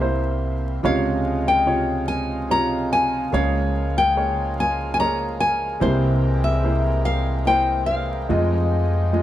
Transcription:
Already playing: upright bass C2, upright piano C2 C3, harmonium C3 G3 A#3 E4 C5, nylon-string guitar E5
0.00 upright piano A#3 E4 C5
0.82 upright piano C#2 C3 C#3 F4 C#5, upright bass C#2, harmonium F3 G#3 D#4 F4, nylon-string guitar F5
1.48 nylon-string guitar G5
1.66 upright piano C3 F4 C#5
2.08 nylon-string guitar G#5
2.49 upright piano C3 F4 C#5, nylon-string guitar A#5
2.93 nylon-string guitar G#5
3.32 upright piano C#2 C#3 A#3 G#4 C#5, upright bass C#2, harmonium G#3 A#3 G#4, nylon-string guitar F5
3.98 nylon-string guitar G5
4.16 upright piano A#3 G#4 C#5
4.60 nylon-string guitar G#5
4.94 nylon-string guitar G#5
4.99 upright piano A#3 G#4 C#5, nylon-string guitar A#5
5.40 nylon-string guitar G#5
5.80 upright piano C2 C3 A#3 E4 C5, upright bass C2, harmonium C3 E3 G4 A#4, nylon-string guitar C5
6.44 nylon-string guitar E5
6.63 upright piano A#3 E4 C5
7.05 nylon-string guitar F5
7.46 upright piano A#3 E4 C5, nylon-string guitar G5
7.86 nylon-string guitar F5
8.29 upright piano F1 F2 G#3 F4 D#5, upright bass F2, harmonium F3 D#4 G#4
9.13 upright piano G#3 F4 D#5

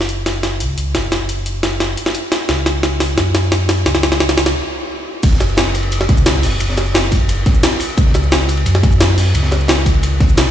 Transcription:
Already playing: sub bass F#1
0.01 snare
0.09 closed hi-hat
0.26 snare, closed hi-hat
0.43 snare, closed hi-hat
0.60 sub bass C#2, closed hi-hat
0.78 closed hi-hat
0.95 sub bass F#1, snare, closed hi-hat
1.12 sub bass F#1, snare, closed hi-hat
1.29 closed hi-hat
1.46 closed hi-hat
1.63 snare, closed hi-hat
1.80 snare, closed hi-hat
1.97 closed hi-hat
2.06 snare
2.15 closed hi-hat
2.32 snare, closed hi-hat
2.49 sub bass C#2, snare, closed hi-hat
2.66 snare, closed hi-hat
2.83 snare, closed hi-hat
3.00 snare, open hi-hat
3.17 sub bass F#2, snare, closed hi-hat
3.35 snare, closed hi-hat
3.52 snare, closed hi-hat
3.69 snare, open hi-hat
3.86 sub bass C#2, snare, closed hi-hat
3.95 snare
4.03 snare, closed hi-hat
4.12 snare
4.20 snare, closed hi-hat
4.29 snare
4.38 snare, open hi-hat
4.46 snare
5.23 sub bass F#1, kick, closed hi-hat, ride, crash, cabasa
5.32 snare
5.40 snare, closed hi-hat, ride, cabasa
5.49 cabasa
5.57 snare, closed hi-hat, ride, cabasa
5.74 open hi-hat, ride, cabasa
5.83 ride
5.92 closed hi-hat, ride, cabasa
6.01 snare
6.09 sub bass C#2, kick, snare, closed hi-hat, ride
6.18 cabasa
6.26 snare, closed hi-hat, ride, cabasa
6.43 sub bass F#1, snare, open hi-hat
6.60 sub bass F#1, closed hi-hat, ride, cabasa
6.70 snare
6.77 snare, closed hi-hat, ride, cabasa
6.86 cabasa
6.94 snare, closed hi-hat, ride, cabasa
7.12 kick, open hi-hat, ride, cabasa
7.29 closed hi-hat, ride, cabasa
7.46 kick, snare, closed hi-hat, ride
7.55 cabasa
7.63 snare, closed hi-hat, ride, cabasa
7.80 open hi-hat, ride
7.97 sub bass C#2, kick, closed hi-hat, ride, cabasa
8.07 snare
8.14 snare, closed hi-hat, ride, cabasa
8.24 cabasa
8.32 snare, closed hi-hat, ride, cabasa
8.49 open hi-hat, ride, cabasa
8.57 ride
8.66 sub bass F#2, closed hi-hat, ride, cabasa
8.75 snare
8.83 kick, snare, closed hi-hat, ride
8.92 cabasa
9.00 snare, closed hi-hat, ride, cabasa
9.18 snare, open hi-hat
9.35 sub bass C#2, closed hi-hat, ride, cabasa
9.43 snare
9.52 snare, closed hi-hat, ride, cabasa
9.61 cabasa
9.68 snare, closed hi-hat, ride, cabasa
9.86 kick, open hi-hat, ride, cabasa
10.03 closed hi-hat, ride, cabasa
10.20 kick, snare, closed hi-hat, ride
10.29 cabasa
10.37 sub bass B1, snare, closed hi-hat, ride, cabasa

